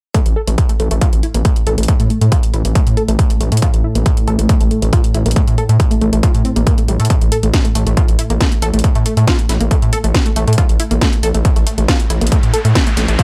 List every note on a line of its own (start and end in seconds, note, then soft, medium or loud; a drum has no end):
0.14 13.23 A2 medium
0.14 0.20 A3 medium
0.14 13.23 A3 medium
0.14 kick loud
0.14 closed hi-hat medium
0.26 0.34 A1 medium
0.26 closed hi-hat medium
0.36 0.42 A4 loud
0.48 0.56 A1 medium
0.48 0.51 A3 medium
0.48 closed hi-hat medium
0.58 kick loud
0.58 closed hi-hat medium
0.69 0.72 A3 medium
0.69 closed hi-hat medium
0.80 0.89 A1 loud
0.80 0.88 A3 medium
0.80 closed hi-hat soft
0.91 0.99 A1 medium
0.91 0.96 A3 medium
0.91 closed hi-hat medium
1.01 1.10 F4 loud
1.01 kick loud
1.01 closed hi-hat medium
1.13 1.21 A1 medium
1.13 closed hi-hat medium
1.23 1.26 E4 medium
1.23 closed hi-hat soft
1.34 1.43 A1 medium
1.34 1.38 A#3 medium
1.34 closed hi-hat medium
1.45 1.50 A3 medium
1.45 kick loud
1.45 closed hi-hat medium
1.56 closed hi-hat medium
1.67 1.75 A1 loud
1.67 1.72 A4 loud
1.67 closed hi-hat medium
1.78 1.86 A1 medium
1.78 1.81 A3 medium
1.78 closed hi-hat medium
1.83 closed hi-hat medium
1.88 kick loud
1.88 closed hi-hat medium
2.00 2.08 A2 medium
2.00 2.03 A3 medium
2.00 closed hi-hat medium
2.10 2.18 A3 medium
2.10 closed hi-hat soft
2.21 2.30 A2 medium
2.21 2.26 A3 medium
2.21 closed hi-hat medium
2.32 2.40 F4 loud
2.32 kick loud
2.32 closed hi-hat medium
2.43 closed hi-hat medium
2.54 2.62 A1 loud
2.54 2.57 E4 medium
2.54 closed hi-hat soft
2.65 2.73 A1 medium
2.65 2.68 A#3 medium
2.65 closed hi-hat medium
2.75 2.81 A3 medium
2.75 kick loud
2.75 closed hi-hat medium
2.87 2.95 A2 medium
2.87 closed hi-hat medium
2.97 3.03 A4 loud
2.97 closed hi-hat soft
3.08 3.17 A1 medium
3.08 3.11 A3 medium
3.08 closed hi-hat medium
3.19 kick loud
3.19 closed hi-hat medium
3.30 3.33 A3 medium
3.30 closed hi-hat medium
3.41 3.49 A1 loud
3.41 3.49 A3 medium
3.41 closed hi-hat medium
3.52 3.60 A2 medium
3.52 3.57 A3 medium
3.52 closed hi-hat soft
3.57 closed hi-hat medium
3.62 3.70 F4 loud
3.62 kick loud
3.62 closed hi-hat medium
3.74 3.82 A1 medium
3.74 closed hi-hat medium
3.84 3.87 E4 medium
3.95 4.04 A1 medium
3.95 3.98 A#3 medium
3.95 closed hi-hat medium
4.06 4.11 A3 medium
4.06 kick loud
4.06 closed hi-hat medium
4.17 closed hi-hat medium
4.27 4.36 A1 medium
4.27 4.33 A4 loud
4.27 closed hi-hat soft
4.39 4.47 A1 medium
4.39 4.42 A3 medium
4.39 closed hi-hat medium
4.49 kick loud
4.49 closed hi-hat medium
4.61 4.69 A1 medium
4.61 4.64 A3 medium
4.61 closed hi-hat soft
4.71 4.79 A3 medium
4.71 closed hi-hat soft
4.82 4.90 A1 medium
4.82 4.87 A3 medium
4.82 closed hi-hat medium
4.93 5.01 F4 loud
4.93 kick loud
4.93 closed hi-hat medium
5.04 closed hi-hat medium
5.14 5.23 A1 loud
5.14 5.18 E4 medium
5.14 closed hi-hat medium
5.26 5.34 A1 medium
5.26 5.29 A#3 medium
5.26 closed hi-hat soft
5.31 closed hi-hat medium
5.36 5.42 A3 medium
5.36 kick loud
5.36 closed hi-hat medium
5.48 5.56 A2 medium
5.48 closed hi-hat medium
5.58 5.63 A4 loud
5.58 closed hi-hat soft
5.69 5.77 A2 medium
5.69 5.72 A3 medium
5.69 closed hi-hat medium
5.80 kick loud
5.80 closed hi-hat medium
5.91 5.94 A3 medium
5.91 closed hi-hat medium
6.01 6.10 A1 medium
6.01 6.10 A3 medium
6.01 closed hi-hat soft
6.13 6.21 A1 medium
6.13 6.18 A3 medium
6.13 closed hi-hat soft
6.23 6.31 F4 loud
6.23 kick loud
6.23 closed hi-hat medium
6.34 6.43 A2 medium
6.34 closed hi-hat soft
6.45 6.50 C4 medium
6.45 closed hi-hat soft
6.56 6.64 A1 medium
6.56 6.61 A#3 medium
6.56 closed hi-hat soft
6.67 6.75 A#3 medium
6.67 kick loud
6.67 closed hi-hat medium
6.78 6.83 A3 medium
6.78 closed hi-hat medium
6.88 6.97 A1 loud
6.88 6.94 G3 medium
6.88 closed hi-hat medium
7.00 7.08 A2 medium
7.00 7.07 A4 medium
7.00 closed hi-hat soft
7.05 closed hi-hat medium
7.10 7.16 A3 medium
7.10 kick loud
7.10 closed hi-hat medium
7.21 7.30 A1 medium
7.21 closed hi-hat soft
7.32 7.37 A4 loud
7.32 open hi-hat loud
7.43 7.51 A1 medium
7.43 7.46 A3 medium
7.43 closed hi-hat medium
7.54 kick loud
7.54 snare loud
7.54 closed hi-hat medium
7.65 7.68 A3 medium
7.65 closed hi-hat medium
7.75 7.84 A1 loud
7.75 7.83 A3 medium
7.75 open hi-hat loud
7.87 7.95 A1 medium
7.87 7.92 A3 medium
7.87 closed hi-hat soft
7.97 8.05 F4 loud
7.97 kick loud
7.97 closed hi-hat medium
8.08 8.17 A1 medium
8.08 closed hi-hat soft
8.19 8.22 E4 medium
8.19 open hi-hat loud
8.30 8.38 A1 medium
8.30 8.33 A#3 medium
8.30 closed hi-hat soft
8.41 8.46 A3 medium
8.41 kick loud
8.41 snare loud
8.41 closed hi-hat medium
8.52 closed hi-hat medium
8.62 8.71 A1 medium
8.62 8.68 A4 loud
8.62 open hi-hat loud
8.74 8.82 A1 medium
8.74 8.77 A3 medium
8.74 closed hi-hat soft
8.79 closed hi-hat medium
8.84 kick loud
8.84 closed hi-hat medium
8.95 9.03 A2 medium
8.95 8.98 A3 medium
8.95 closed hi-hat medium
9.06 9.14 A3 medium
9.06 open hi-hat loud
9.17 9.25 A2 medium
9.17 9.22 A3 medium
9.17 closed hi-hat soft
9.27 9.36 F4 loud
9.27 kick loud
9.27 snare loud
9.27 closed hi-hat medium
9.39 closed hi-hat medium
9.49 9.58 A1 medium
9.49 9.53 E4 medium
9.49 snare soft
9.49 open hi-hat loud
9.61 9.69 A1 medium
9.61 9.64 A#3 medium
9.61 closed hi-hat soft
9.71 9.76 A3 medium
9.71 kick loud
9.71 closed hi-hat medium
9.82 9.90 A2 medium
9.82 closed hi-hat soft
9.93 9.98 A4 loud
9.93 open hi-hat loud
10.04 10.12 A1 medium
10.04 10.07 A3 medium
10.04 closed hi-hat medium
10.14 kick loud
10.14 snare loud
10.14 closed hi-hat medium
10.26 10.29 A3 medium
10.26 closed hi-hat medium
10.36 10.45 A1 loud
10.36 10.44 A3 medium
10.36 open hi-hat loud
10.47 10.56 A2 medium
10.47 10.53 A3 medium
10.47 closed hi-hat soft
10.53 closed hi-hat medium
10.58 10.66 F4 loud
10.58 kick loud
10.58 closed hi-hat medium
10.58 riser medium
10.69 10.77 A1 medium
10.69 closed hi-hat medium
10.80 10.83 E4 medium
10.80 open hi-hat loud
10.91 10.99 A1 medium
10.91 10.94 A#3 medium
10.91 closed hi-hat medium
11.01 11.07 A3 medium
11.01 kick loud
11.01 snare loud
11.01 closed hi-hat medium
11.13 closed hi-hat medium
11.23 11.32 A1 medium
11.23 11.29 A4 loud
11.23 open hi-hat loud
11.34 11.43 A1 medium
11.34 11.37 A3 medium
11.34 closed hi-hat medium
11.45 kick loud
11.45 closed hi-hat medium
11.56 11.64 A1 medium
11.56 11.59 A3 medium
11.56 closed hi-hat medium
11.67 11.75 A3 medium
11.67 open hi-hat loud
11.78 11.86 A1 medium
11.78 11.83 A3 medium
11.78 closed hi-hat medium
11.88 11.97 F4 loud
11.88 kick loud
11.88 snare loud
11.88 closed hi-hat medium
12.00 closed hi-hat soft
12.10 12.19 A1 loud
12.10 12.13 E4 medium
12.10 open hi-hat loud
12.21 12.30 A1 medium
12.21 12.24 A#3 medium
12.21 closed hi-hat medium
12.27 closed hi-hat medium
12.32 12.37 A3 medium
12.32 kick loud
12.32 closed hi-hat medium
12.43 12.51 A2 medium
12.43 closed hi-hat medium
12.54 12.59 A4 loud
12.54 open hi-hat loud
12.65 12.73 A2 medium
12.65 12.68 A3 medium
12.65 closed hi-hat medium
12.75 kick loud
12.75 snare loud
12.75 closed hi-hat medium
12.87 12.90 A3 medium
12.87 closed hi-hat medium
12.97 13.06 A1 loud
12.97 13.05 A3 medium
12.97 snare soft
12.97 open hi-hat loud
13.08 13.17 A1 medium
13.08 13.13 A3 medium
13.08 closed hi-hat medium
13.19 13.23 F4 loud
13.19 kick loud
13.19 closed hi-hat medium